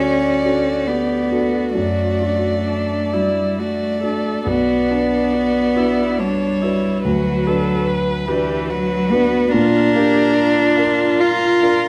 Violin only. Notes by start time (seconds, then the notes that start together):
Already playing: D5
1.75 D5
3.59 D5
4.46 D5
6.19 C#5
7.04 B4
8.70 B4
9.51 A#4
11.19 A#4